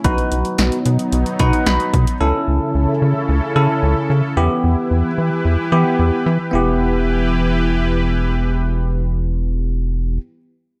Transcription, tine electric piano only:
\new Staff \with { instrumentName = "Tine electric piano" } { \time 4/4 \key e \dorian \tempo 4 = 111 << { r2 r8 fis''8 b''4 | r1 | r1 | r1 |
r1 | } \\ { <dis' fis' b'>4. r4 <dis' fis' b'>4 r8 | <cis' e' a'>4. r4 <cis' e' a'>4 r8 | <b e' g'>4. r4 <b e' g'>4 r8 | <b e' g'>1~ |
<b e' g'>1 | } >> }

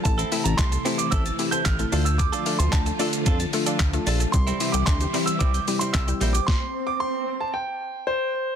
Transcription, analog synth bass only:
\new Staff \with { instrumentName = "Analog synth bass" } { \clef bass \time 4/4 \key c \mixolydian \tempo 4 = 112 a,,8 r16 a,,16 c,8 r8 a,,8 r8 a,,8 d,8~ | d,8 r16 d,16 d,8 r8 f,8 r8 d,8 bes,,8 | c,8 r16 c,16 d,8 r8 c,8 r8 c,8 bes,,8 | r1 | }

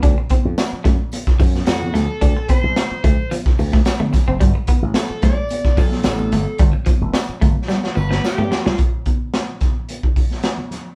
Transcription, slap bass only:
\new Staff \with { instrumentName = "Slap bass" } { \clef bass \time 4/4 \key g \major \tempo 4 = 110 d,16 r8 eis,16 r8 fis,16 r8. fis,8 eis,8 d,16 r16 | d,16 r8 c,16 r8 d,16 r8. d,8 r16 d16 r16 fis,,16 | g,,16 r8 a,,16 r8 b,,16 r8. b,,8 a,,8 g,,16 r16 | g,,16 r8 f,,16 r8 g,,16 r8. g,,8 r16 g,16 r16 c,16 |
r1 | }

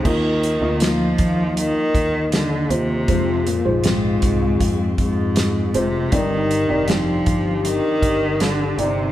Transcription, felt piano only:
<<
  \new Staff \with { instrumentName = "Felt piano" } { \time 4/4 \key ees \major \tempo 4 = 79 <bes f' ees''>8. <bes f' ees''>2 r8. <bes f' c''>8 | <aes f' c''>8. <aes f' c''>2 r8. <aes f' c''>8 | <c' ees' d''>8. <c' ees' d''>2 r8. <c' ees' d''>8 | }
  \new Staff \with { instrumentName = "Felt piano" } { \clef bass \time 4/4 \key ees \major ees'4. r2 r8 | r1 | g,4. r2 r8 | }
>>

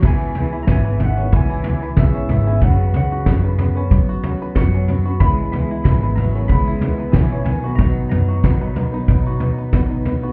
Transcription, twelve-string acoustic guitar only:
\new Staff \with { instrumentName = "Twelve-string acoustic guitar" } { \time 4/4 \key cis \dorian \tempo 4 = 93 <cis gis b e' gis'>8 <gis b e' gis'>8 <cis gis b e' gis'>16 <b e' gis'>16 <gis b e' gis'>16 <b e' gis'>8. <gis b e' gis'>8 <cis gis b e' gis'>8 <gis b e' gis'>16 <b e' gis'>16 | <fis cis' fis' b'>8 <fis cis' fis' b'>8 <fis cis' fis' b'>16 <cis' fis' b'>16 <fis cis' fis' b'>16 <cis' fis' b'>8. <fis cis' fis' b'>8 <fis cis' fis' b'>8 <fis cis' fis' b'>16 <cis' fis' b'>16 | <cis gis b e' b'>8 <gis b e' b'>8 <cis gis b e' b'>16 <b e' b'>16 <gis b e' b'>16 <b e' b'>8. <gis b e' b'>8 <cis gis b e' b'>8 <fis b dis' b'>16 <fis b dis' b'>16 | <b, dis fis b dis' b'>8 <fis b dis' b'>8 <b, dis fis b dis' b'>16 <fis b dis' b'>16 <fis b dis' b'>16 <fis b dis' b'>8. <fis b dis' b'>8 <b, dis fis b dis' b'>8 <fis b dis' b'>16 <fis b dis' b'>16 | }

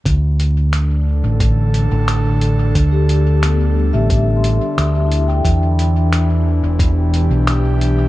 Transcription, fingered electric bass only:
\new Staff \with { instrumentName = "Fingered electric bass" } { \clef bass \time 4/4 \key e \phrygian \tempo 4 = 89 d,4.~ d,16 a,,4 a,,4~ a,,16 | d,4.~ d,16 a,,4 r16 d,4 | e,4.~ e,16 e,,4 b,,4~ b,,16 | }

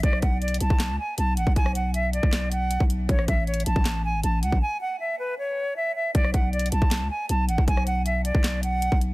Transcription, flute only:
\new Staff \with { instrumentName = "Flute" } { \time 4/4 \key b \dorian \tempo 4 = 157 d''8 fis''8 d''8 a''4 gis''8 a''8 fis''8 | gis''8 fis''8 e''8 d''4 fis''4. | cis''8 e''8 cis''8 a''4 gis''8 a''8 fis''8 | gis''8 fis''8 e''8 b'8 cis''4 e''8 e''8 |
d''8 fis''8 d''8 a''4 gis''8 a''8 fis''8 | gis''8 fis''8 e''8 d''4 fis''4. | }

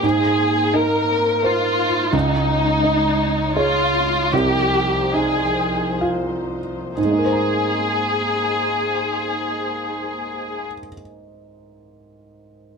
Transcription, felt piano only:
\new Staff \with { instrumentName = "Felt piano" } { \time 3/4 \key aes \major \tempo 4 = 69 aes,4 ees'4 <bes' c''>4 | des,4 ees'4 <aes' des''>4 | c,4 ees'4 <f' f''>4 | <aes, aes ees' bes' c'' bes''>2.~ |
<aes, aes ees' bes' c'' bes''>2. | }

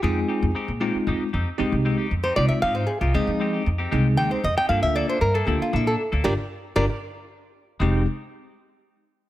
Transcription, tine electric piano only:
\new Staff \with { instrumentName = "Tine electric piano" } { \time 6/8 \key f \dorian \tempo 4. = 77 <aes c' ees' f'>4 r8 <aes c' ees' f'>4 r8 | <aes c' ees' g'>4 r8 <aes c' ees' f'>4 r8 | <aes c' ees' aes'>4 r8 <aes c' ees' aes'>4 r8 | <bes d' f' a'>4 r8 <bes d' f' a'>4 r8 |
<d' f' g'>8 r8 <d' f' g'>8 r4. | <aes c' ees' g'>8 r2 r8 | }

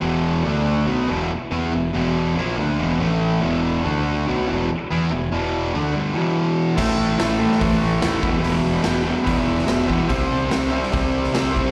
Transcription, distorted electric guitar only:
\new Staff \with { instrumentName = "Distorted electric guitar" } { \clef bass \time 4/4 \key e \minor \tempo 4 = 144 <e, b, e>4 <d a d'>4 <b, fis b>8 <e, b, e>8 r8 <e b e'>8 | <e, b,>8 <e, b, e>4 <ais, f ais>8 <d a d'>8 <e, b, e>8 <a, e a>4 | <e, b, e>4 <d a d'>4 <b, fis b>8 <e, b, e>8 r8 <e b e'>8 | <e, b,>8 <e, b, e>4 <d a d'>8 <g, d g>8 <e, b, e>4. |
<a, e a>4 <a, e a>8 <a, e a>8 <a, e a>4 <a, e a>8 <e, b, e>8 | <e, b, e>4 <e, b, e>8 <e, b, e>8 <e, b, e>4 <e, b, e>8 <e, b, e>8 | <c g c'>4 <c g c'>8 <c g c'>8 <c g c'>4 <c g c'>8 <c g c'>8 | }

